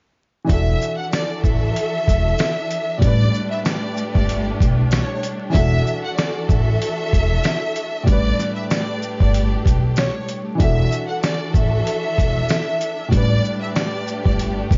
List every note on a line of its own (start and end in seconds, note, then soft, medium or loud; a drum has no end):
0.45 2.95 E3 medium
0.45 2.97 D4 medium
0.49 0.73 E1 loud
0.49 3.00 E3 medium
0.49 8.03 D4 medium
0.49 3.00 F#4 medium
0.49 2.98 F#4 medium
0.49 3.00 A4 loud
0.49 3.00 A4 medium
0.49 0.96 E5 loud
0.49 kick loud
0.49 closed hi-hat loud
0.82 shaker medium
0.98 1.10 F#5 medium
1.12 1.41 D5 medium
1.12 snare loud
1.12 closed hi-hat medium
1.12 tambourine medium
1.44 1.68 A1 medium
1.44 2.98 E5 medium
1.44 kick loud
1.44 shaker medium
1.76 closed hi-hat medium
2.08 2.32 E1 medium
2.08 kick loud
2.08 closed hi-hat medium
2.08 shaker medium
2.38 snare loud
2.38 closed hi-hat medium
2.38 tambourine medium
2.71 closed hi-hat medium
2.71 shaker medium
2.98 5.48 A2 medium
2.98 5.50 G3 medium
2.98 5.51 A3 medium
2.98 5.51 G4 medium
2.98 3.48 D5 loud
2.98 kick loud
3.02 3.26 A1 loud
3.02 5.51 D4 medium
3.02 closed hi-hat loud
3.07 5.53 B4 medium
3.34 shaker medium
3.51 3.63 E5 medium
3.65 4.12 D5 medium
3.65 snare loud
3.65 closed hi-hat medium
3.65 tambourine medium
3.97 shaker medium
4.15 4.49 G1 loud
4.15 4.43 D5 medium
4.15 kick loud
4.29 closed hi-hat medium
4.60 4.98 B1 medium
4.60 kick loud
4.60 closed hi-hat medium
4.60 shaker medium
4.91 5.20 C#5 medium
4.91 snare loud
4.91 closed hi-hat medium
4.91 tambourine medium
5.23 closed hi-hat soft
5.23 shaker medium
5.50 8.01 E3 medium
5.50 8.04 E3 medium
5.50 8.02 D4 medium
5.50 8.04 F#4 medium
5.50 8.04 A4 loud
5.50 6.01 E5 loud
5.55 5.79 E1 loud
5.55 8.04 F#4 medium
5.55 8.05 A4 medium
5.55 kick loud
5.55 closed hi-hat loud
5.87 shaker medium
6.05 6.17 F#5 medium
6.17 6.46 D5 medium
6.17 snare loud
6.17 closed hi-hat medium
6.17 tambourine medium
6.49 6.73 A1 medium
6.49 8.04 E5 loud
6.49 kick loud
6.49 shaker medium
6.82 closed hi-hat medium
7.13 7.37 E1 medium
7.13 kick loud
7.13 closed hi-hat medium
7.13 shaker medium
7.44 snare loud
7.44 closed hi-hat medium
7.44 tambourine medium
7.76 closed hi-hat medium
7.76 shaker medium
8.03 10.54 A2 medium
8.03 10.55 G3 medium
8.03 kick loud
8.07 8.31 A1 loud
8.07 10.57 A3 medium
8.07 10.57 D4 medium
8.07 10.56 D4 medium
8.07 10.57 G4 medium
8.07 8.54 D5 loud
8.07 closed hi-hat loud
8.12 10.58 B4 medium
8.39 snare soft
8.39 shaker medium
8.56 8.68 E5 medium
8.70 9.17 D5 medium
8.70 snare loud
8.70 closed hi-hat medium
8.70 tambourine medium
9.02 shaker medium
9.20 9.55 G1 loud
9.20 9.49 D5 medium
9.20 kick loud
9.34 closed hi-hat medium
9.66 10.03 B1 medium
9.66 kick loud
9.66 closed hi-hat medium
9.66 shaker medium
9.96 10.25 C#5 medium
9.96 snare loud
9.96 closed hi-hat medium
9.96 tambourine medium
10.29 closed hi-hat medium
10.29 shaker medium
10.55 13.06 E3 medium
10.55 13.07 D4 medium
10.60 10.84 E1 loud
10.60 13.10 E3 medium
10.60 14.78 D4 medium
10.60 13.10 F#4 medium
10.60 13.09 F#4 medium
10.60 13.10 A4 loud
10.60 13.10 A4 medium
10.60 11.07 E5 loud
10.60 kick loud
10.60 closed hi-hat loud
10.92 shaker medium
11.09 11.21 F#5 medium
11.23 11.52 D5 medium
11.23 snare loud
11.23 closed hi-hat medium
11.23 tambourine medium
11.54 11.78 A1 medium
11.54 13.08 E5 loud
11.54 kick medium
11.54 shaker medium
11.87 closed hi-hat medium
12.18 12.42 E1 medium
12.18 kick loud
12.18 closed hi-hat medium
12.18 shaker medium
12.49 snare loud
12.49 closed hi-hat medium
12.49 tambourine medium
12.81 closed hi-hat medium
12.81 shaker medium
13.08 14.78 A2 medium
13.08 14.78 G3 medium
13.08 14.78 A3 medium
13.08 14.78 G4 medium
13.08 13.59 D5 loud
13.08 kick loud
13.12 13.36 A1 loud
13.12 14.78 D4 medium
13.12 closed hi-hat loud
13.17 14.78 B4 medium
13.45 shaker medium
13.61 13.74 E5 medium
13.75 14.23 D5 medium
13.75 snare loud
13.75 closed hi-hat medium
13.75 tambourine medium
14.07 shaker medium
14.25 14.60 G1 medium
14.25 14.54 D5 medium
14.25 kick loud
14.39 closed hi-hat medium
14.71 14.78 B1 medium
14.71 kick loud
14.71 closed hi-hat medium
14.71 shaker medium